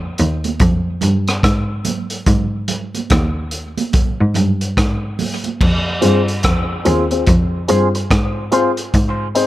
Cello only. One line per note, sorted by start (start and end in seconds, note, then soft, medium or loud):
0.19 0.59 D#2 medium
0.61 1.00 F2 loud
1.03 1.27 G2 medium
1.44 2.23 G#2 loud
2.28 3.07 G#2 medium
3.11 3.75 D#2 medium
4.21 4.35 G#2 medium
4.36 4.75 G2 medium
4.78 5.57 G#2 loud
5.61 6.01 F2 medium
6.04 6.43 G2 medium
6.45 6.69 F2 medium
6.86 7.26 D#2 medium
7.28 7.67 F2 medium
7.70 7.94 G2 medium
8.11 8.90 G#2 medium
8.95 9.47 G#2 medium